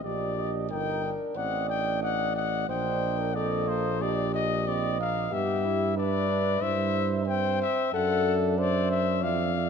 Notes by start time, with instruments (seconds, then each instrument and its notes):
0.03 tuba A#1, trombone D4, french horn G4, trumpet D5, flugelhorn D#5
0.36 flugelhorn D#5
0.69 tuba G1, trombone D#4, french horn A#4, flugelhorn D#5, trumpet G5
1.04 trombone D4
1.35 tuba A1, trombone C4, french horn D5, flugelhorn D#5, trumpet F#5
1.69 trombone D4, trumpet G5
2.02 french horn D5, flugelhorn D#5, trumpet F#5
2.36 flugelhorn D#5, trumpet F#5
2.68 tuba A#1, trombone D4, french horn C5, flugelhorn D#5, trumpet G5
3.19 french horn A#4
3.35 trombone C4, french horn A4, trumpet D5, flugelhorn D#5
3.68 trombone A#3, trumpet C5
4.01 trombone D4, french horn G4, trumpet D5, flugelhorn D#5
4.34 trumpet D#5, flugelhorn D#5
4.67 trombone C4, trumpet D5, flugelhorn D#5
5.00 trombone A#3, trumpet F5
5.31 tuba G2, trombone B3, french horn G4, flugelhorn E5, trumpet E5
5.65 trombone E4
5.97 trombone D4, french horn B4, trumpet D5, flugelhorn E5
6.29 trombone D4
6.61 tuba G2, trombone E4, french horn C5, flugelhorn E5, trumpet E5
7.27 trombone C4, french horn C5, trumpet G5
7.62 trumpet E5
7.93 tuba F#2, trombone D4, french horn A4, flugelhorn E5, trumpet F#5
8.58 french horn C5, trumpet D5, flugelhorn E5
8.91 trumpet E5
9.23 tuba F2, french horn D5, flugelhorn E5, trumpet F5
9.55 flugelhorn E5